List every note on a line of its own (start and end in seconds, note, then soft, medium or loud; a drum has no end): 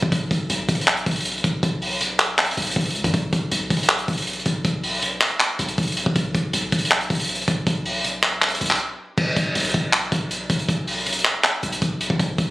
0.03 0.11 B1 loud
0.03 kick loud
0.12 0.30 B1 loud
0.12 kick loud
0.12 closed hi-hat medium
0.31 0.49 B1 loud
0.31 kick loud
0.31 closed hi-hat medium
0.50 0.68 B1 loud
0.50 closed hi-hat medium
0.69 1.05 B1 loud
0.69 kick medium
0.69 closed hi-hat medium
0.75 closed hi-hat medium
0.81 closed hi-hat medium
0.87 clap loud
0.87 closed hi-hat medium
0.97 closed hi-hat medium
1.06 1.43 B1 loud
1.06 kick loud
1.06 closed hi-hat medium
1.11 closed hi-hat medium
1.16 closed hi-hat medium
1.20 closed hi-hat medium
1.25 closed hi-hat medium
1.32 closed hi-hat medium
1.38 closed hi-hat soft
1.44 1.62 B1 loud
1.44 kick loud
1.44 closed hi-hat medium
1.63 2.54 B1 loud
1.63 kick loud
1.63 closed hi-hat medium
1.82 open hi-hat medium
2.01 closed hi-hat medium
2.20 clap loud
2.20 closed hi-hat medium
2.38 clap loud
2.38 closed hi-hat medium
2.45 closed hi-hat medium
2.51 closed hi-hat medium
2.57 2.75 B1 loud
2.57 closed hi-hat medium
2.62 closed hi-hat medium
2.67 closed hi-hat medium
2.71 closed hi-hat medium
2.76 2.97 B1 loud
2.76 kick loud
2.76 closed hi-hat medium
2.81 closed hi-hat medium
2.85 closed hi-hat medium
2.90 closed hi-hat medium
2.95 3.04 C#2 loud
2.95 closed hi-hat soft
3.04 3.13 F#2 loud
3.04 kick loud
3.04 closed hi-hat medium
3.14 3.32 B1 loud
3.14 kick loud
3.14 closed hi-hat medium
3.33 3.51 B1 loud
3.33 kick loud
3.33 closed hi-hat medium
3.52 3.70 B1 loud
3.52 closed hi-hat medium
3.70 4.07 B1 loud
3.70 kick medium
3.70 closed hi-hat medium
3.77 closed hi-hat medium
3.83 closed hi-hat medium
3.89 clap loud
3.89 closed hi-hat medium
3.99 closed hi-hat medium
4.08 4.44 B1 loud
4.08 kick loud
4.08 closed hi-hat medium
4.13 closed hi-hat medium
4.18 closed hi-hat medium
4.22 closed hi-hat medium
4.27 closed hi-hat medium
4.33 closed hi-hat medium
4.39 closed hi-hat soft
4.46 4.64 B1 loud
4.46 kick loud
4.46 closed hi-hat medium
4.65 5.19 B1 loud
4.65 kick loud
4.65 closed hi-hat medium
4.84 open hi-hat medium
5.02 closed hi-hat medium
5.21 clap loud
5.21 closed hi-hat medium
5.40 clap loud
5.40 closed hi-hat medium
5.59 5.77 B1 loud
5.59 closed hi-hat medium
5.68 closed hi-hat soft
5.78 6.05 B1 loud
5.78 kick loud
5.78 closed hi-hat medium
5.83 closed hi-hat medium
5.87 closed hi-hat medium
5.92 closed hi-hat medium
5.97 closed hi-hat medium
6.06 6.15 B1 loud
6.06 kick loud
6.16 6.34 B1 loud
6.16 kick loud
6.16 closed hi-hat medium
6.35 6.53 B1 loud
6.35 kick loud
6.35 closed hi-hat medium
6.53 6.72 B1 loud
6.53 closed hi-hat medium
6.72 7.09 B1 loud
6.72 kick medium
6.72 closed hi-hat medium
6.79 closed hi-hat medium
6.85 closed hi-hat medium
6.91 clap loud
6.91 closed hi-hat medium
7.01 closed hi-hat medium
7.10 7.46 B1 loud
7.10 kick loud
7.10 closed hi-hat medium
7.15 closed hi-hat medium
7.20 closed hi-hat medium
7.24 closed hi-hat medium
7.29 closed hi-hat medium
7.35 closed hi-hat medium
7.41 closed hi-hat soft
7.48 7.66 B1 loud
7.48 kick loud
7.48 closed hi-hat medium
7.67 8.57 B1 loud
7.67 kick loud
7.67 closed hi-hat medium
7.86 open hi-hat medium
8.04 closed hi-hat medium
8.23 clap loud
8.23 closed hi-hat medium
8.42 clap loud
8.42 closed hi-hat medium
8.48 closed hi-hat medium
8.55 closed hi-hat medium
8.61 8.79 B1 loud
8.61 closed hi-hat medium
8.66 closed hi-hat medium
8.70 clap medium
8.70 closed hi-hat medium
8.75 closed hi-hat medium
9.18 9.36 B1 loud
9.18 kick loud
9.18 crash medium
9.36 9.55 B1 loud
9.36 kick loud
9.36 closed hi-hat medium
9.55 9.74 B1 loud
9.55 closed hi-hat medium
9.60 closed hi-hat medium
9.65 closed hi-hat medium
9.69 closed hi-hat soft
9.74 10.10 B1 loud
9.74 kick medium
9.74 closed hi-hat medium
9.93 clap loud
9.93 closed hi-hat medium
10.12 10.48 B1 loud
10.12 kick loud
10.12 closed hi-hat medium
10.31 closed hi-hat medium
10.50 10.68 B1 loud
10.50 kick loud
10.50 closed hi-hat medium
10.59 closed hi-hat soft
10.69 11.23 B1 loud
10.69 kick loud
10.69 closed hi-hat medium
10.87 open hi-hat medium
11.06 closed hi-hat medium
11.13 closed hi-hat medium
11.19 closed hi-hat soft
11.25 clap medium
11.25 closed hi-hat medium
11.44 clap loud
11.44 closed hi-hat medium
11.63 11.81 B1 loud
11.63 closed hi-hat medium
11.72 closed hi-hat medium
11.82 12.09 B1 loud
11.82 kick loud
11.82 closed hi-hat medium
12.01 closed hi-hat medium
12.10 12.19 B1 loud
12.10 kick loud
12.19 12.38 B1 loud
12.19 kick loud
12.19 closed hi-hat medium
12.38 12.51 B1 loud
12.38 kick loud
12.38 closed hi-hat medium